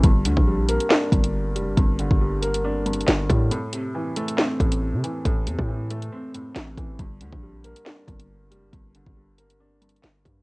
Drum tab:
HH |x-----x-----------x--x--------x--x--------x-----|x-----x-----------x--x--------x-x-x-x-----x-----|x-----x-----------x--x--------x--x--------x-----|x-----x-----------x--x--------x-----x-----x-----|
CP |------------------------x-----------------------|------------------------------------x-----------|------------------------x-----------------------|------------------------------------x-----------|
SD |------------------------o-----------------------|------------------------------------o-----------|------------------------o-----------------------|------------------------------------o-----------|
BD |o--------o--------------------o-----------------|o--------o--------------------------------o-----|------------------------------o-----------------|o--------o--------------------------------o-----|

HH |x-----x-----------x--x--------x--x--------x-----|x-----x-----------x--x--------x-x-x-x-----x-----|
CP |------------------------x-----------------------|------------------------------------x-----------|
SD |------------------------o-----------------------|------------------------------------o-----------|
BD |o--------o--------------------o-----------------|o--------o--------------------------------o-----|